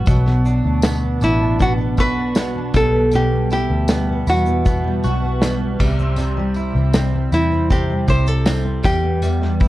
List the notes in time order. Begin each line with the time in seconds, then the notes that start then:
Already playing: E2 G3 B3 E4 F#4
0.06 B1 B2 F#3, kick, tambourine, shaker
0.26 B3, snare
0.45 D4 F#4, shaker
0.65 D2 D4
0.83 B3, snare, tambourine, shaker
1.02 D4
1.20 A1 B3 D4 E4, tambourine, shaker
1.40 D4
1.59 B2 B3 F#4, kick, tambourine, shaker
1.78 B3
1.97 B1 F#4 B4, kick, tambourine, shaker
2.17 D4
2.35 B3, snare, tambourine, shaker
2.55 D4
2.74 B1 B2 G3 A4, kick, tambourine, shaker
2.93 B3
3.12 B2 G3 G4, tambourine, shaker
3.32 G3
3.50 E4 G4, tambourine, shaker
3.70 D2 B3
3.88 G3 B3, snare, tambourine, shaker
4.09 B3
4.27 E2 G3 E4 F#4, tambourine, shaker
4.46 B3, shaker
4.65 B2 B3, kick, tambourine, shaker
4.83 G3
5.03 B1 F#4, tambourine, shaker
5.22 B3
5.41 G3 B3, snare, tambourine, shaker
5.60 B3
5.79 C2 C3 G3, kick, tambourine, crash
5.99 C4, shaker
6.16 C3 G3, tambourine, shaker
6.37 G3
6.54 E4, tambourine, shaker
6.75 C2 C4
6.94 G3 C4, snare, tambourine, shaker
7.13 C4
7.32 E2 G3 E4, tambourine, shaker
7.52 C4
7.70 C3 C4 G4, kick, tambourine, shaker
7.90 G3
8.08 C2 E4 G4 C5, kick, tambourine, shaker
8.27 C4 A4, shaker
8.46 G3 C4, snare, tambourine, shaker
8.65 C4
8.84 E2 G3 G4, kick, tambourine, shaker
9.04 B3
9.22 E2 G3, tambourine, shaker
9.41 G3, snare
9.60 E4, kick, tambourine, shaker